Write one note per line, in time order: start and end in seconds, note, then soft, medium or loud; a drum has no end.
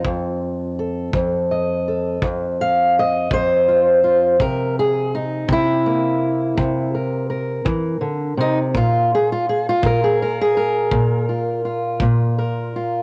0.00 0.78 F4 medium
0.04 1.13 F2 medium
0.04 kick medium
0.79 1.87 A4 soft
1.13 2.21 F2 medium
1.13 kick medium
1.51 2.59 D#5 soft
1.88 3.32 A4 soft
2.22 3.31 F2 medium
2.22 kick medium
2.61 2.96 F5 medium
2.99 4.06 D#5 medium
3.31 4.40 F2 medium
3.31 4.41 C5 medium
3.31 kick medium
3.68 4.03 F4 soft
4.04 4.36 F4 soft
4.40 5.47 C3 medium
4.40 4.77 A#4 medium
4.40 kick medium
4.79 5.14 G#4 medium
5.15 5.50 D#4 medium
5.48 6.56 C3 medium
5.48 kick medium
5.52 6.96 E4 loud
5.86 13.03 A#3 soft
6.57 7.65 C3 medium
6.57 kick medium
6.95 7.29 A#4 soft
7.30 8.70 A#4 soft
7.65 8.01 E3 medium
7.65 kick medium
8.01 8.37 D3 medium
8.37 8.74 C3 medium
8.37 8.58 D#4 loud
8.74 9.81 A#2 medium
8.74 9.12 F4 medium
8.74 kick medium
9.15 9.31 G#4 medium
9.32 9.49 F4 medium
9.49 9.66 G#4 medium
9.69 10.03 F4 medium
9.82 10.91 A#2 medium
9.82 10.21 A#4 medium
9.82 kick medium
10.04 10.39 G#4 medium
10.22 10.56 A#4 medium
10.41 11.29 G#4 medium
10.57 12.37 A#4 medium
10.91 12.00 A#2 medium
10.91 kick medium
11.29 11.64 F4 soft
11.65 12.76 F4 soft
12.00 13.03 A#2 medium
12.00 kick medium
12.38 13.03 A#4 soft
12.76 13.03 F4 soft